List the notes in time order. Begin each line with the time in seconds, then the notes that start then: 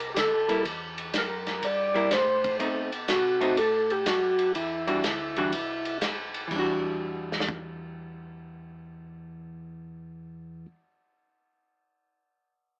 Already playing: C2
0.00 ride
0.14 D2 G4, kick, snare, hi-hat pedal, ride
0.19 A4
0.32 C2
0.48 A#1 G3 A#3 E4, ride
0.65 E2, kick, ride
0.98 ride
1.14 F#2, kick, snare, hi-hat pedal, ride
1.18 A#4
1.47 snare, ride
1.63 G2 D5, kick, ride
1.94 G3 A#3 E4, ride
2.11 A2 C5, kick, snare, hi-hat pedal, ride
2.44 kick, ride
2.59 B2 A3 C4 D#4, kick, ride
2.92 ride
3.08 C3 F#4, kick, snare, hi-hat pedal, ride
3.41 A3 C4 D#4, ride
3.57 A2 A4, kick, ride
3.90 G4, ride
4.06 F#2 F#4, kick, snare, hi-hat pedal, ride
4.39 ride
4.55 E2 E4, kick, ride
4.87 E3 G3 D4 F#4, ride
5.04 D2, kick, snare, hi-hat pedal, ride
5.36 E3 G3 D4 F#4, ride
5.52 C2, kick, ride
5.85 ride
6.01 B1, kick, snare, hi-hat pedal, ride
6.34 ride
6.47 E2 E3, kick, crash
6.52 G3
6.56 D4 F#4
7.32 snare
7.40 snare
7.49 kick